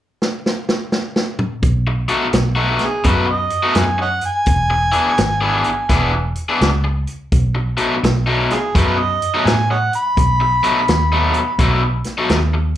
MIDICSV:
0, 0, Header, 1, 6, 480
1, 0, Start_track
1, 0, Tempo, 711744
1, 1101, Time_signature, 4, 2, 24, 8
1, 8614, End_track
2, 0, Start_track
2, 0, Title_t, "Harmonica"
2, 0, Program_c, 0, 22
2, 1905, Note_on_c, 0, 68, 76
2, 2069, Note_on_c, 0, 71, 76
2, 2079, Note_off_c, 0, 68, 0
2, 2227, Note_on_c, 0, 75, 85
2, 2237, Note_off_c, 0, 71, 0
2, 2543, Note_on_c, 0, 80, 78
2, 2553, Note_off_c, 0, 75, 0
2, 2698, Note_off_c, 0, 80, 0
2, 2707, Note_on_c, 0, 73, 59
2, 2707, Note_on_c, 0, 75, 59
2, 2707, Note_on_c, 0, 78, 85
2, 2753, Note_off_c, 0, 75, 0
2, 2754, Note_off_c, 0, 73, 0
2, 2861, Note_off_c, 0, 78, 0
2, 2870, Note_on_c, 0, 80, 109
2, 4280, Note_off_c, 0, 80, 0
2, 5742, Note_on_c, 0, 63, 60
2, 5742, Note_on_c, 0, 65, 60
2, 5742, Note_on_c, 0, 68, 85
2, 5791, Note_off_c, 0, 63, 0
2, 5796, Note_off_c, 0, 65, 0
2, 5907, Note_on_c, 0, 71, 87
2, 5917, Note_off_c, 0, 68, 0
2, 6063, Note_on_c, 0, 75, 94
2, 6073, Note_off_c, 0, 71, 0
2, 6381, Note_on_c, 0, 80, 88
2, 6391, Note_off_c, 0, 75, 0
2, 6536, Note_off_c, 0, 80, 0
2, 6545, Note_on_c, 0, 73, 61
2, 6545, Note_on_c, 0, 75, 61
2, 6545, Note_on_c, 0, 78, 87
2, 6593, Note_off_c, 0, 73, 0
2, 6596, Note_off_c, 0, 75, 0
2, 6698, Note_off_c, 0, 78, 0
2, 6713, Note_on_c, 0, 83, 108
2, 8116, Note_off_c, 0, 83, 0
2, 8614, End_track
3, 0, Start_track
3, 0, Title_t, "Overdriven electric guitar"
3, 0, Program_c, 1, 29
3, 1406, Note_on_c, 1, 47, 83
3, 1410, Note_on_c, 1, 57, 79
3, 1413, Note_on_c, 1, 66, 93
3, 1415, Note_on_c, 1, 63, 90
3, 1519, Note_off_c, 1, 47, 0
3, 1522, Note_off_c, 1, 57, 0
3, 1523, Note_off_c, 1, 66, 0
3, 1524, Note_off_c, 1, 63, 0
3, 1722, Note_on_c, 1, 66, 71
3, 1727, Note_on_c, 1, 63, 75
3, 1730, Note_on_c, 1, 57, 59
3, 1734, Note_on_c, 1, 47, 61
3, 1910, Note_off_c, 1, 66, 0
3, 1912, Note_off_c, 1, 63, 0
3, 1914, Note_off_c, 1, 57, 0
3, 1916, Note_off_c, 1, 47, 0
3, 2052, Note_on_c, 1, 47, 76
3, 2057, Note_on_c, 1, 57, 78
3, 2060, Note_on_c, 1, 63, 85
3, 2062, Note_on_c, 1, 66, 87
3, 2199, Note_off_c, 1, 63, 0
3, 2199, Note_off_c, 1, 66, 0
3, 2204, Note_off_c, 1, 57, 0
3, 2212, Note_off_c, 1, 47, 0
3, 2447, Note_on_c, 1, 66, 70
3, 2449, Note_on_c, 1, 57, 64
3, 2450, Note_on_c, 1, 63, 71
3, 2454, Note_on_c, 1, 47, 65
3, 2584, Note_off_c, 1, 66, 0
3, 2585, Note_off_c, 1, 57, 0
3, 2586, Note_off_c, 1, 63, 0
3, 2588, Note_off_c, 1, 47, 0
3, 3317, Note_on_c, 1, 52, 90
3, 3322, Note_on_c, 1, 59, 86
3, 3325, Note_on_c, 1, 68, 93
3, 3326, Note_on_c, 1, 62, 88
3, 3436, Note_off_c, 1, 52, 0
3, 3438, Note_off_c, 1, 59, 0
3, 3440, Note_off_c, 1, 62, 0
3, 3440, Note_off_c, 1, 68, 0
3, 3647, Note_on_c, 1, 68, 73
3, 3649, Note_on_c, 1, 62, 66
3, 3651, Note_on_c, 1, 59, 71
3, 3653, Note_on_c, 1, 52, 60
3, 3833, Note_off_c, 1, 68, 0
3, 3834, Note_off_c, 1, 62, 0
3, 3835, Note_off_c, 1, 59, 0
3, 3836, Note_off_c, 1, 52, 0
3, 3975, Note_on_c, 1, 52, 84
3, 3978, Note_on_c, 1, 59, 87
3, 3984, Note_on_c, 1, 62, 82
3, 3987, Note_on_c, 1, 68, 92
3, 4126, Note_off_c, 1, 68, 0
3, 4131, Note_off_c, 1, 62, 0
3, 4134, Note_off_c, 1, 52, 0
3, 4136, Note_off_c, 1, 59, 0
3, 4374, Note_on_c, 1, 68, 75
3, 4378, Note_on_c, 1, 59, 72
3, 4379, Note_on_c, 1, 62, 74
3, 4385, Note_on_c, 1, 52, 61
3, 4508, Note_off_c, 1, 68, 0
3, 4510, Note_off_c, 1, 59, 0
3, 4510, Note_off_c, 1, 62, 0
3, 4513, Note_off_c, 1, 52, 0
3, 5241, Note_on_c, 1, 54, 80
3, 5242, Note_on_c, 1, 47, 84
3, 5244, Note_on_c, 1, 57, 98
3, 5248, Note_on_c, 1, 63, 92
3, 5357, Note_off_c, 1, 54, 0
3, 5358, Note_off_c, 1, 47, 0
3, 5359, Note_off_c, 1, 57, 0
3, 5361, Note_off_c, 1, 63, 0
3, 5573, Note_on_c, 1, 63, 75
3, 5579, Note_on_c, 1, 47, 60
3, 5579, Note_on_c, 1, 54, 62
3, 5579, Note_on_c, 1, 57, 65
3, 5755, Note_off_c, 1, 63, 0
3, 5758, Note_off_c, 1, 47, 0
3, 5758, Note_off_c, 1, 54, 0
3, 5758, Note_off_c, 1, 57, 0
3, 5902, Note_on_c, 1, 47, 91
3, 5906, Note_on_c, 1, 54, 82
3, 5908, Note_on_c, 1, 57, 90
3, 5910, Note_on_c, 1, 63, 91
3, 6049, Note_off_c, 1, 63, 0
3, 6052, Note_off_c, 1, 57, 0
3, 6055, Note_off_c, 1, 54, 0
3, 6057, Note_off_c, 1, 47, 0
3, 6300, Note_on_c, 1, 63, 75
3, 6303, Note_on_c, 1, 47, 65
3, 6304, Note_on_c, 1, 54, 71
3, 6304, Note_on_c, 1, 57, 73
3, 6429, Note_off_c, 1, 63, 0
3, 6431, Note_off_c, 1, 47, 0
3, 6432, Note_off_c, 1, 54, 0
3, 6432, Note_off_c, 1, 57, 0
3, 7171, Note_on_c, 1, 47, 83
3, 7172, Note_on_c, 1, 54, 88
3, 7172, Note_on_c, 1, 57, 89
3, 7178, Note_on_c, 1, 63, 102
3, 7281, Note_off_c, 1, 47, 0
3, 7281, Note_off_c, 1, 54, 0
3, 7281, Note_off_c, 1, 57, 0
3, 7284, Note_off_c, 1, 63, 0
3, 7501, Note_on_c, 1, 63, 75
3, 7503, Note_on_c, 1, 57, 72
3, 7508, Note_on_c, 1, 54, 66
3, 7513, Note_on_c, 1, 47, 60
3, 7676, Note_off_c, 1, 63, 0
3, 7678, Note_off_c, 1, 57, 0
3, 7680, Note_off_c, 1, 54, 0
3, 7683, Note_off_c, 1, 47, 0
3, 7818, Note_on_c, 1, 47, 78
3, 7823, Note_on_c, 1, 54, 81
3, 7825, Note_on_c, 1, 63, 92
3, 7826, Note_on_c, 1, 57, 92
3, 7968, Note_off_c, 1, 63, 0
3, 7971, Note_off_c, 1, 57, 0
3, 7972, Note_off_c, 1, 47, 0
3, 7974, Note_off_c, 1, 54, 0
3, 8211, Note_on_c, 1, 63, 72
3, 8216, Note_on_c, 1, 57, 64
3, 8217, Note_on_c, 1, 47, 61
3, 8217, Note_on_c, 1, 54, 65
3, 8343, Note_off_c, 1, 63, 0
3, 8345, Note_off_c, 1, 47, 0
3, 8345, Note_off_c, 1, 54, 0
3, 8345, Note_off_c, 1, 57, 0
3, 8614, End_track
4, 0, Start_track
4, 0, Title_t, "Fingered electric bass"
4, 0, Program_c, 2, 33
4, 1095, Note_on_c, 2, 35, 88
4, 1391, Note_off_c, 2, 35, 0
4, 1574, Note_on_c, 2, 35, 85
4, 1871, Note_off_c, 2, 35, 0
4, 2053, Note_on_c, 2, 42, 85
4, 2350, Note_off_c, 2, 42, 0
4, 2533, Note_on_c, 2, 42, 87
4, 2830, Note_off_c, 2, 42, 0
4, 3012, Note_on_c, 2, 28, 89
4, 3309, Note_off_c, 2, 28, 0
4, 3497, Note_on_c, 2, 32, 86
4, 3793, Note_off_c, 2, 32, 0
4, 3973, Note_on_c, 2, 28, 89
4, 4270, Note_off_c, 2, 28, 0
4, 4458, Note_on_c, 2, 37, 91
4, 4753, Note_off_c, 2, 37, 0
4, 4936, Note_on_c, 2, 35, 91
4, 5232, Note_off_c, 2, 35, 0
4, 5418, Note_on_c, 2, 35, 83
4, 5713, Note_off_c, 2, 35, 0
4, 5898, Note_on_c, 2, 42, 93
4, 6193, Note_off_c, 2, 42, 0
4, 6376, Note_on_c, 2, 45, 87
4, 6670, Note_off_c, 2, 45, 0
4, 6858, Note_on_c, 2, 35, 92
4, 7152, Note_off_c, 2, 35, 0
4, 7343, Note_on_c, 2, 39, 84
4, 7634, Note_off_c, 2, 39, 0
4, 7813, Note_on_c, 2, 35, 91
4, 8107, Note_off_c, 2, 35, 0
4, 8293, Note_on_c, 2, 39, 84
4, 8587, Note_off_c, 2, 39, 0
4, 8614, End_track
5, 0, Start_track
5, 0, Title_t, "Muted overdriven electric guitar strokes"
5, 1261, Note_on_c, 9, 29, 50
5, 1329, Note_off_c, 9, 29, 0
5, 1576, Note_on_c, 9, 29, 46
5, 1643, Note_off_c, 9, 29, 0
5, 2207, Note_on_c, 9, 29, 51
5, 2275, Note_off_c, 9, 29, 0
5, 2687, Note_on_c, 9, 29, 45
5, 2755, Note_off_c, 9, 29, 0
5, 3170, Note_on_c, 9, 29, 49
5, 3238, Note_off_c, 9, 29, 0
5, 3495, Note_on_c, 9, 29, 49
5, 3562, Note_off_c, 9, 29, 0
5, 4134, Note_on_c, 9, 29, 49
5, 4201, Note_off_c, 9, 29, 0
5, 4615, Note_on_c, 9, 29, 43
5, 4682, Note_off_c, 9, 29, 0
5, 5090, Note_on_c, 9, 29, 50
5, 5158, Note_off_c, 9, 29, 0
5, 5421, Note_on_c, 9, 29, 49
5, 5489, Note_off_c, 9, 29, 0
5, 6057, Note_on_c, 9, 29, 52
5, 6124, Note_off_c, 9, 29, 0
5, 6545, Note_on_c, 9, 29, 44
5, 6613, Note_off_c, 9, 29, 0
5, 7016, Note_on_c, 9, 29, 45
5, 7083, Note_off_c, 9, 29, 0
5, 7349, Note_on_c, 9, 29, 49
5, 7416, Note_off_c, 9, 29, 0
5, 7976, Note_on_c, 9, 29, 51
5, 8044, Note_off_c, 9, 29, 0
5, 8454, Note_on_c, 9, 29, 46
5, 8522, Note_off_c, 9, 29, 0
5, 8614, End_track
6, 0, Start_track
6, 0, Title_t, "Drums"
6, 147, Note_on_c, 9, 38, 67
6, 214, Note_off_c, 9, 38, 0
6, 310, Note_on_c, 9, 38, 72
6, 378, Note_off_c, 9, 38, 0
6, 463, Note_on_c, 9, 38, 87
6, 531, Note_off_c, 9, 38, 0
6, 621, Note_on_c, 9, 38, 80
6, 689, Note_off_c, 9, 38, 0
6, 782, Note_on_c, 9, 38, 87
6, 849, Note_off_c, 9, 38, 0
6, 936, Note_on_c, 9, 45, 100
6, 1003, Note_off_c, 9, 45, 0
6, 1096, Note_on_c, 9, 42, 74
6, 1098, Note_on_c, 9, 36, 103
6, 1164, Note_off_c, 9, 42, 0
6, 1165, Note_off_c, 9, 36, 0
6, 1405, Note_on_c, 9, 42, 62
6, 1472, Note_off_c, 9, 42, 0
6, 1570, Note_on_c, 9, 42, 81
6, 1576, Note_on_c, 9, 38, 96
6, 1638, Note_off_c, 9, 42, 0
6, 1643, Note_off_c, 9, 38, 0
6, 1881, Note_on_c, 9, 42, 60
6, 1887, Note_on_c, 9, 38, 31
6, 1949, Note_off_c, 9, 42, 0
6, 1954, Note_off_c, 9, 38, 0
6, 2051, Note_on_c, 9, 42, 84
6, 2055, Note_on_c, 9, 36, 112
6, 2119, Note_off_c, 9, 42, 0
6, 2123, Note_off_c, 9, 36, 0
6, 2362, Note_on_c, 9, 42, 70
6, 2430, Note_off_c, 9, 42, 0
6, 2528, Note_on_c, 9, 42, 85
6, 2534, Note_on_c, 9, 38, 102
6, 2596, Note_off_c, 9, 42, 0
6, 2601, Note_off_c, 9, 38, 0
6, 2841, Note_on_c, 9, 42, 68
6, 2908, Note_off_c, 9, 42, 0
6, 3007, Note_on_c, 9, 42, 81
6, 3014, Note_on_c, 9, 36, 110
6, 3075, Note_off_c, 9, 42, 0
6, 3081, Note_off_c, 9, 36, 0
6, 3323, Note_on_c, 9, 42, 63
6, 3391, Note_off_c, 9, 42, 0
6, 3492, Note_on_c, 9, 42, 81
6, 3497, Note_on_c, 9, 38, 109
6, 3559, Note_off_c, 9, 42, 0
6, 3565, Note_off_c, 9, 38, 0
6, 3805, Note_on_c, 9, 42, 58
6, 3872, Note_off_c, 9, 42, 0
6, 3975, Note_on_c, 9, 36, 107
6, 3975, Note_on_c, 9, 42, 79
6, 3980, Note_on_c, 9, 38, 34
6, 4042, Note_off_c, 9, 42, 0
6, 4043, Note_off_c, 9, 36, 0
6, 4047, Note_off_c, 9, 38, 0
6, 4286, Note_on_c, 9, 42, 65
6, 4353, Note_off_c, 9, 42, 0
6, 4459, Note_on_c, 9, 42, 74
6, 4465, Note_on_c, 9, 38, 102
6, 4527, Note_off_c, 9, 42, 0
6, 4532, Note_off_c, 9, 38, 0
6, 4769, Note_on_c, 9, 42, 58
6, 4837, Note_off_c, 9, 42, 0
6, 4937, Note_on_c, 9, 42, 80
6, 4938, Note_on_c, 9, 36, 108
6, 5004, Note_off_c, 9, 42, 0
6, 5005, Note_off_c, 9, 36, 0
6, 5244, Note_on_c, 9, 42, 63
6, 5312, Note_off_c, 9, 42, 0
6, 5421, Note_on_c, 9, 42, 80
6, 5426, Note_on_c, 9, 38, 111
6, 5488, Note_off_c, 9, 42, 0
6, 5494, Note_off_c, 9, 38, 0
6, 5736, Note_on_c, 9, 42, 59
6, 5741, Note_on_c, 9, 38, 31
6, 5803, Note_off_c, 9, 42, 0
6, 5808, Note_off_c, 9, 38, 0
6, 5902, Note_on_c, 9, 36, 107
6, 5905, Note_on_c, 9, 42, 88
6, 5911, Note_on_c, 9, 38, 31
6, 5969, Note_off_c, 9, 36, 0
6, 5973, Note_off_c, 9, 42, 0
6, 5978, Note_off_c, 9, 38, 0
6, 6218, Note_on_c, 9, 42, 69
6, 6285, Note_off_c, 9, 42, 0
6, 6386, Note_on_c, 9, 42, 82
6, 6391, Note_on_c, 9, 38, 105
6, 6453, Note_off_c, 9, 42, 0
6, 6459, Note_off_c, 9, 38, 0
6, 6697, Note_on_c, 9, 42, 64
6, 6765, Note_off_c, 9, 42, 0
6, 6861, Note_on_c, 9, 36, 107
6, 6865, Note_on_c, 9, 42, 82
6, 6928, Note_off_c, 9, 36, 0
6, 6932, Note_off_c, 9, 42, 0
6, 7173, Note_on_c, 9, 42, 60
6, 7241, Note_off_c, 9, 42, 0
6, 7338, Note_on_c, 9, 42, 82
6, 7344, Note_on_c, 9, 38, 101
6, 7406, Note_off_c, 9, 42, 0
6, 7411, Note_off_c, 9, 38, 0
6, 7648, Note_on_c, 9, 42, 61
6, 7715, Note_off_c, 9, 42, 0
6, 7815, Note_on_c, 9, 42, 79
6, 7816, Note_on_c, 9, 36, 111
6, 7883, Note_off_c, 9, 36, 0
6, 7883, Note_off_c, 9, 42, 0
6, 8122, Note_on_c, 9, 42, 69
6, 8127, Note_on_c, 9, 38, 35
6, 8189, Note_off_c, 9, 42, 0
6, 8194, Note_off_c, 9, 38, 0
6, 8291, Note_on_c, 9, 42, 79
6, 8296, Note_on_c, 9, 38, 101
6, 8358, Note_off_c, 9, 42, 0
6, 8364, Note_off_c, 9, 38, 0
6, 8614, End_track
0, 0, End_of_file